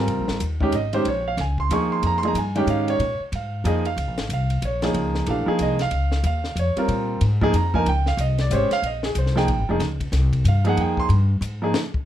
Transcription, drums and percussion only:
0.08 ride
0.28 snare
0.40 hi-hat pedal, ride
0.61 kick
0.72 hi-hat pedal, ride
0.93 ride
1.05 ride
1.38 snare, ride
1.58 kick
1.71 hi-hat pedal, ride
2.03 ride
2.23 ride
2.35 hi-hat pedal, ride
2.56 ride
2.67 hi-hat pedal, ride
2.88 ride
3.00 ride
3.33 ride
3.65 hi-hat pedal, ride
3.85 ride
3.98 ride
4.18 snare, ride
4.30 hi-hat pedal, ride
4.50 ride
4.62 hi-hat pedal, ride
4.82 snare, ride
4.94 ride
5.15 snare
5.26 ride
5.59 hi-hat pedal, ride
5.79 snare, ride
5.91 ride
6.12 snare
6.24 hi-hat pedal, ride
6.44 snare
6.57 hi-hat pedal, ride
6.77 ride
6.89 ride
7.21 ride
7.41 kick
7.54 hi-hat pedal, ride
7.74 kick
7.86 ride
8.06 snare
8.18 hi-hat pedal, ride
8.38 snare, ride
8.51 hi-hat pedal, ride
8.71 snare, ride
8.83 ride
9.03 snare
9.15 hi-hat pedal, ride
9.26 snare
9.37 snare
9.48 ride
9.80 snare, ride
10.00 kick, ride
10.13 snare, hi-hat pedal, ride
10.33 kick, ride
10.45 hi-hat pedal, ride
10.65 ride
10.77 ride
10.97 kick
11.10 ride
11.42 hi-hat pedal, ride
11.74 snare
11.94 kick

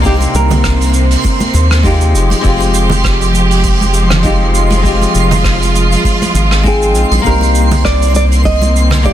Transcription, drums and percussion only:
0.04 kick, open hi-hat, shaker
0.20 open hi-hat, muted conga, shaker
0.35 shaker
0.50 open hi-hat, high conga, low conga, shaker
0.64 kick, cross-stick, open hi-hat, shaker
0.81 open hi-hat, shaker
0.94 shaker
1.11 open hi-hat, shaker
1.24 kick, open hi-hat, muted conga, shaker
1.40 open hi-hat, high conga, shaker
1.54 muted conga, shaker
1.71 cross-stick, open hi-hat, shaker
1.83 kick, open hi-hat, high conga, shaker
2.01 shaker
2.15 shaker
2.30 open hi-hat, high conga, shaker
2.43 kick, open hi-hat, shaker
2.60 open hi-hat, muted conga, shaker
2.74 shaker
2.90 open hi-hat, high conga, low conga, shaker
3.04 kick, cross-stick, open hi-hat, shaker
3.21 open hi-hat, shaker
3.33 high conga, shaker
3.51 open hi-hat, shaker
3.64 kick, open hi-hat, shaker
3.81 high conga, shaker
3.94 shaker
4.10 cross-stick, open hi-hat, muted conga, low conga, shaker
4.23 kick, open hi-hat, high conga, shaker
4.55 shaker
4.70 open hi-hat, high conga, shaker
4.84 kick, open hi-hat, shaker
5.02 open hi-hat, muted conga, shaker
5.15 shaker
5.31 open hi-hat, high conga, low conga, shaker
5.44 kick, cross-stick, open hi-hat, shaker
5.62 open hi-hat, shaker
5.76 shaker
5.92 open hi-hat, shaker
6.04 kick, open hi-hat, muted conga, shaker
6.22 open hi-hat, high conga, shaker
6.35 muted conga, shaker
6.51 cross-stick, open hi-hat, shaker
6.64 kick, open hi-hat, high conga, shaker
6.82 shaker
6.95 shaker
7.11 open hi-hat, high conga, shaker
7.24 kick, open hi-hat, shaker
7.41 open hi-hat, muted conga, shaker
7.55 shaker
7.71 open hi-hat, high conga, low conga, shaker
7.84 kick, cross-stick, open hi-hat, shaker
8.02 open hi-hat, shaker
8.14 high conga, shaker
8.32 open hi-hat, shaker
8.44 kick, open hi-hat, shaker
8.62 high conga, shaker
8.76 shaker
8.91 cross-stick, open hi-hat, muted conga, low conga, shaker
9.04 kick, open hi-hat, high conga, shaker

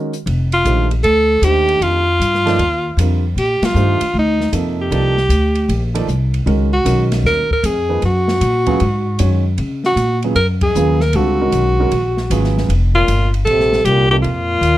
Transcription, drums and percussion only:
0.13 closed hi-hat
0.27 ride
0.52 ride
0.65 hi-hat pedal, ride
0.91 ride
1.04 ride
1.43 hi-hat pedal, ride
1.68 ride
1.82 ride
2.21 hi-hat pedal, ride
2.34 snare
2.47 snare, ride
2.59 ride
2.98 hi-hat pedal, ride
3.38 ride
3.63 snare, ride
3.75 hi-hat pedal
4.01 ride
4.41 snare
4.53 hi-hat pedal, ride
4.92 ride
5.17 snare
5.30 hi-hat pedal, ride
5.55 ride
5.69 ride
5.95 ride
6.08 hi-hat pedal
6.34 ride
6.47 ride
6.86 hi-hat pedal, ride
7.12 snare, ride
7.25 snare
7.51 kick
7.64 hi-hat pedal, ride
8.02 ride
8.28 snare
8.41 hi-hat pedal, ride
8.66 kick, ride
8.80 ride
9.19 hi-hat pedal, ride
9.58 ride
9.84 snare
9.97 hi-hat pedal, ride
10.22 ride
10.36 ride
10.61 kick, ride
10.75 hi-hat pedal
11.00 snare
11.13 ride
11.52 hi-hat pedal, ride
11.91 ride
12.17 snare
12.31 hi-hat pedal, ride
12.44 snare
12.58 snare
12.70 ride
13.08 hi-hat pedal, ride
13.34 ride
13.47 ride
13.60 snare
13.73 snare
13.85 hi-hat pedal, ride
14.24 ride
14.63 hi-hat pedal, ride

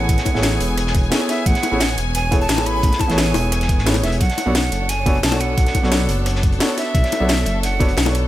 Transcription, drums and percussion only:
0.09 kick, closed hi-hat
0.18 snare, closed hi-hat
0.26 kick, closed hi-hat, high bongo
0.35 snare
0.43 snare, closed hi-hat
0.60 closed hi-hat, open hi-hat
0.78 cross-stick, closed hi-hat
0.87 snare
0.95 kick, closed hi-hat
1.03 closed hi-hat
1.11 snare, closed hi-hat
1.21 cross-stick
1.29 cross-stick, snare, closed hi-hat
1.46 kick, closed hi-hat
1.55 snare, closed hi-hat
1.63 closed hi-hat, high bongo
1.80 snare, closed hi-hat
1.90 closed hi-hat
1.98 closed hi-hat
2.15 closed hi-hat
2.32 kick, closed hi-hat
2.41 closed hi-hat
2.48 snare, closed hi-hat, open hi-hat
2.58 snare, high bongo
2.66 cross-stick, closed hi-hat
2.83 kick, closed hi-hat
2.93 snare, closed hi-hat
2.99 kick, closed hi-hat, high bongo
3.10 snare, closed hi-hat
3.18 snare, closed hi-hat
3.34 closed hi-hat, open hi-hat, high bongo
3.52 cross-stick, closed hi-hat
3.61 snare, closed hi-hat
3.69 kick, closed hi-hat
3.78 snare
3.86 snare, closed hi-hat
3.94 cross-stick, closed hi-hat, high bongo
4.04 cross-stick, snare, closed hi-hat
4.12 closed hi-hat
4.21 kick, closed hi-hat
4.30 snare, closed hi-hat
4.38 closed hi-hat, high bongo
4.55 snare, closed hi-hat
4.64 closed hi-hat
4.72 closed hi-hat
4.89 closed hi-hat
5.06 kick, closed hi-hat
5.15 closed hi-hat
5.23 snare, closed hi-hat, open hi-hat
5.32 snare, high bongo
5.40 cross-stick, closed hi-hat
5.57 kick, closed hi-hat
5.67 snare, closed hi-hat
5.75 kick, closed hi-hat, high bongo
5.83 snare
5.92 snare, closed hi-hat
6.09 closed hi-hat, open hi-hat
6.26 cross-stick, closed hi-hat
6.35 snare
6.43 kick, closed hi-hat
6.52 closed hi-hat
6.60 snare, closed hi-hat
6.70 cross-stick
6.78 cross-stick, snare, closed hi-hat
6.95 kick, closed hi-hat
7.04 snare, closed hi-hat
7.12 closed hi-hat, high bongo
7.29 snare, closed hi-hat
7.37 closed hi-hat
7.46 closed hi-hat
7.63 closed hi-hat
7.80 kick, closed hi-hat
7.88 closed hi-hat
7.97 snare, closed hi-hat, open hi-hat
8.06 snare, high bongo
8.15 cross-stick, closed hi-hat

